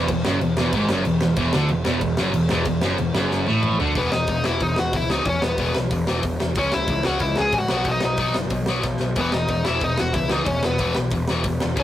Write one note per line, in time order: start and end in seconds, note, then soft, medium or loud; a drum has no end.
0.08 0.24 E1 medium
0.08 0.23 E2 medium
0.08 kick medium
0.08 crash medium
0.25 0.40 F#1 medium
0.25 0.41 F#2 loud
0.25 snare loud
0.41 0.56 E1 medium
0.41 0.54 E2 medium
0.41 crash medium
0.57 0.72 E1 loud
0.57 0.73 E2 loud
0.57 snare loud
0.73 0.88 G#1 loud
0.73 0.89 G#2 loud
0.73 kick loud
0.73 crash medium
0.89 1.05 F#1 loud
0.89 1.06 F#2 loud
0.89 snare loud
1.05 1.21 E1 medium
1.05 1.19 E2 medium
1.05 crash medium
1.21 1.36 E1 medium
1.21 1.35 E2 medium
1.21 snare loud
1.36 1.52 E1 loud
1.36 1.53 E2 loud
1.36 kick loud
1.36 crash medium
1.52 1.70 D2 loud
1.52 1.69 D3 loud
1.52 snare loud
1.68 1.86 E1 medium
1.68 1.82 E2 medium
1.68 crash medium
1.84 2.01 E1 medium
1.84 2.00 E2 loud
1.84 snare loud
2.01 2.17 E1 medium
2.01 2.15 E2 medium
2.01 kick medium
2.01 crash medium
2.17 2.34 F#1 loud
2.17 2.34 F#2 loud
2.17 snare loud
2.34 2.50 E1 medium
2.34 2.48 E2 medium
2.34 crash medium
2.49 2.66 E1 medium
2.49 2.66 E2 loud
2.49 snare loud
2.65 2.82 E1 medium
2.65 2.80 E2 medium
2.65 kick medium
2.65 crash medium
2.81 2.98 F#1 medium
2.81 2.99 F#2 loud
2.81 snare loud
2.98 3.14 E1 medium
2.98 3.13 E2 medium
2.98 crash medium
3.15 3.45 F#1 medium
3.15 3.47 F#2 loud
3.15 snare loud
3.31 snare medium
3.46 3.78 A1 medium
3.46 3.79 A2 loud
3.46 high tom medium
3.63 mid tom loud
3.80 3.95 D2 medium
3.80 3.95 D3 loud
3.80 floor tom medium
3.95 4.09 E1 medium
3.95 4.11 E2 medium
3.95 4.11 B2 medium
3.95 4.12 E3 loud
3.95 4.12 B3 medium
3.95 4.14 B4 medium
3.95 kick loud
3.95 open hi-hat soft
4.12 4.26 E1 medium
4.12 4.27 E2 medium
4.12 4.27 B2 medium
4.12 4.43 D#4 medium
4.12 4.46 D#5 medium
4.12 snare loud
4.27 4.42 E1 medium
4.27 4.42 E2 medium
4.27 4.44 B2 medium
4.27 kick loud
4.27 open hi-hat medium
4.44 4.59 E1 medium
4.44 4.60 E2 medium
4.44 4.60 B2 medium
4.44 4.60 E3 medium
4.44 4.61 E4 medium
4.44 4.63 E5 medium
4.44 snare loud
4.60 4.74 E1 medium
4.60 4.76 E2 medium
4.60 4.76 B2 medium
4.60 4.77 D#4 medium
4.60 4.79 D#5 medium
4.60 kick medium
4.60 open hi-hat soft
4.76 4.92 E1 medium
4.76 4.92 E2 medium
4.76 4.92 B2 medium
4.76 4.93 F#4 medium
4.76 4.97 F#5 medium
4.76 snare loud
4.93 5.20 C#2 medium
4.93 5.08 E2 medium
4.93 5.08 B2 medium
4.93 5.10 E4 medium
4.93 kick loud
4.93 open hi-hat medium
4.97 5.12 E5 medium
5.10 5.25 E2 medium
5.10 5.25 B2 medium
5.10 5.26 E3 medium
5.10 5.25 D#4 medium
5.10 5.28 D#5 medium
5.10 snare loud
5.25 5.39 E1 medium
5.25 5.41 E2 medium
5.25 5.41 B2 medium
5.25 5.42 C#4 medium
5.25 kick loud
5.25 open hi-hat medium
5.29 5.44 C#5 medium
5.42 5.56 E1 medium
5.42 5.57 E2 medium
5.42 5.57 B2 medium
5.42 5.73 B3 medium
5.42 5.76 B4 medium
5.42 snare loud
5.58 5.72 E1 medium
5.58 5.74 E2 medium
5.58 5.74 B2 medium
5.58 5.75 E3 medium
5.58 kick loud
5.58 open hi-hat medium
5.75 5.89 B1 medium
5.75 5.90 E2 medium
5.75 5.90 B2 medium
5.75 snare loud
5.91 6.04 E1 medium
5.91 6.06 E2 medium
5.91 6.06 B2 medium
5.91 kick loud
5.91 open hi-hat medium
6.07 6.22 E1 medium
6.07 6.23 E2 medium
6.07 6.23 B2 medium
6.07 6.23 E3 medium
6.07 snare loud
6.23 6.37 E1 medium
6.23 6.39 E2 medium
6.23 6.39 B2 medium
6.23 kick loud
6.23 open hi-hat medium
6.40 6.54 E1 medium
6.40 6.55 E2 medium
6.40 6.55 B2 medium
6.40 snare loud
6.55 6.69 C#2 medium
6.55 6.72 C#3 loud
6.55 6.72 G#3 loud
6.55 6.72 C#4 loud
6.55 6.72 C#4 medium
6.55 6.74 C#5 medium
6.55 kick loud
6.55 open hi-hat medium
6.72 6.87 C#2 medium
6.72 6.88 C#3 medium
6.72 6.88 G#3 medium
6.72 7.03 E4 medium
6.72 7.06 E5 medium
6.72 snare loud
6.88 7.02 C#2 medium
6.88 7.04 C#3 medium
6.88 7.04 G#3 medium
6.88 kick loud
6.88 open hi-hat medium
7.03 7.20 C#2 medium
7.03 7.20 C#3 medium
7.03 7.21 G#3 medium
7.03 7.20 F#4 medium
7.03 7.22 F#5 medium
7.03 snare loud
7.07 7.22 C#4 medium
7.19 7.34 C#2 medium
7.19 7.36 C#3 medium
7.19 7.37 G#3 medium
7.19 7.36 E4 medium
7.19 7.39 E5 medium
7.19 kick loud
7.19 open hi-hat soft
7.36 7.52 C#2 medium
7.36 7.52 C#3 medium
7.36 7.52 G#3 medium
7.36 7.53 G#4 medium
7.36 snare medium
7.41 7.56 G#5 loud
7.52 7.67 A1 medium
7.52 7.69 C#3 medium
7.52 7.69 G#3 medium
7.52 kick loud
7.52 open hi-hat medium
7.58 7.72 F#4 medium
7.58 7.74 F#5 medium
7.68 7.84 B1 medium
7.68 7.84 B2 medium
7.68 7.85 F#3 medium
7.68 7.86 B3 loud
7.68 snare loud
7.74 7.87 F#4 medium
7.74 7.90 F#5 medium
7.84 7.99 B1 medium
7.84 8.01 B2 medium
7.84 8.01 F#3 medium
7.84 8.03 D#4 medium
7.84 kick loud
7.84 open hi-hat medium
7.91 8.04 D#5 medium
8.01 8.17 B1 medium
8.01 8.18 B2 medium
8.01 8.18 F#3 medium
8.01 8.34 D#4 medium
8.01 snare loud
8.06 8.35 D#5 medium
8.17 8.32 B1 medium
8.17 8.33 B2 medium
8.17 8.33 F#3 medium
8.17 8.35 B3 medium
8.17 kick loud
8.17 open hi-hat medium
8.34 8.49 F#1 medium
8.34 8.49 B2 medium
8.34 8.50 F#3 medium
8.34 snare loud
8.50 8.65 B1 medium
8.50 8.66 B2 medium
8.50 8.66 F#3 medium
8.50 kick medium
8.50 open hi-hat medium
8.66 8.81 B1 medium
8.66 8.83 B2 medium
8.66 8.84 F#3 medium
8.66 8.84 B3 medium
8.66 snare loud
8.84 8.97 B1 medium
8.84 8.99 B2 medium
8.84 8.99 F#3 medium
8.84 kick loud
8.84 snare medium
8.99 9.14 B1 medium
8.99 9.15 B2 medium
8.99 9.16 F#3 medium
8.99 snare medium
9.16 9.30 E1 medium
9.16 9.32 E2 medium
9.16 9.32 B2 medium
9.16 9.32 E3 loud
9.16 9.33 B3 medium
9.16 kick loud
9.16 open hi-hat medium
9.21 9.36 B4 medium
9.32 9.47 E1 medium
9.32 9.48 E2 medium
9.32 9.48 B2 medium
9.32 9.64 D#4 medium
9.32 9.67 D#5 loud
9.32 snare loud
9.48 9.62 E1 medium
9.48 9.64 E2 medium
9.48 9.64 B2 medium
9.48 kick medium
9.48 open hi-hat soft
9.64 9.80 E1 medium
9.64 9.81 E2 medium
9.64 9.81 B2 loud
9.64 9.81 E3 medium
9.64 9.80 E4 medium
9.64 9.82 E5 medium
9.64 snare loud
9.81 9.95 E1 medium
9.81 9.97 E2 medium
9.81 9.97 B2 medium
9.81 9.98 D#4 medium
9.81 10.00 D#5 medium
9.81 kick loud
9.81 open hi-hat soft
9.97 10.13 E1 medium
9.97 10.14 E2 medium
9.97 10.14 B2 medium
9.97 10.14 F#4 medium
9.97 10.14 F#5 medium
9.97 snare loud
10.13 10.41 C#2 medium
10.13 10.29 E2 medium
10.13 10.29 B2 medium
10.13 10.29 E4 medium
10.13 10.31 E5 medium
10.13 kick loud
10.13 open hi-hat medium
10.29 10.46 E2 medium
10.29 10.46 B2 medium
10.29 10.47 E3 loud
10.29 10.46 D#4 medium
10.29 10.48 D#5 medium
10.29 snare loud
10.46 10.60 E1 medium
10.46 10.62 E2 medium
10.46 10.62 B2 medium
10.46 10.62 C#4 medium
10.46 10.64 C#5 medium
10.46 kick loud
10.46 open hi-hat medium
10.63 10.78 E1 medium
10.63 10.78 E2 medium
10.63 10.79 B2 medium
10.63 10.95 B3 medium
10.63 10.95 B4 medium
10.63 snare loud
10.78 10.93 E1 medium
10.78 10.95 E2 medium
10.78 10.95 B2 medium
10.78 10.95 E3 medium
10.78 kick loud
10.78 open hi-hat medium
10.95 11.10 B1 medium
10.95 11.11 E2 medium
10.95 11.11 B2 medium
10.95 snare loud
11.11 11.26 E1 medium
11.11 11.27 E2 medium
11.11 11.28 B2 medium
11.11 kick loud
11.11 open hi-hat medium
11.28 11.42 E1 medium
11.28 11.44 E2 medium
11.28 11.44 B2 medium
11.28 11.45 E3 medium
11.28 snare loud
11.44 11.58 E1 medium
11.44 11.60 E2 medium
11.44 11.60 B2 medium
11.44 kick loud
11.44 open hi-hat medium
11.60 11.76 E1 medium
11.60 11.76 E2 medium
11.60 11.75 B2 medium
11.60 snare loud
11.76 11.83 C#2 medium
11.76 11.83 C#3 medium
11.76 11.83 G#3 loud
11.76 11.83 C#4 loud
11.76 kick loud
11.76 open hi-hat medium
11.80 11.83 C#4 medium
11.80 11.83 C#5 medium